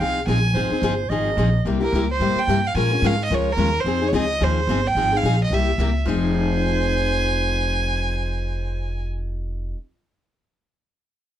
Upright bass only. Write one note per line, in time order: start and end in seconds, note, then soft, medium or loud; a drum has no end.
0.00 0.26 C2 medium
0.27 0.53 A#1 medium
0.54 0.69 G#1 medium
0.71 muted upright bass stroke soft
0.82 1.09 G1 medium
1.10 1.37 G#1 medium
1.37 1.64 A#1 medium
1.65 1.92 C2 medium
1.92 2.19 C#2 medium
2.20 2.35 G#2 medium
2.36 muted upright bass stroke soft
2.47 2.74 G2 medium
2.75 3.01 A#2 medium
3.02 3.29 G#2 medium
3.30 3.56 C#2 medium
3.57 3.84 D#2 medium
3.84 4.12 F2 medium
4.13 4.40 C#2 loud
4.41 4.67 D#2 medium
4.67 4.94 G1 medium
4.95 5.22 G#1 medium
5.23 5.49 A#1 medium
5.50 5.77 C2 medium
5.78 6.05 C#2 medium
6.06 9.73 F1 medium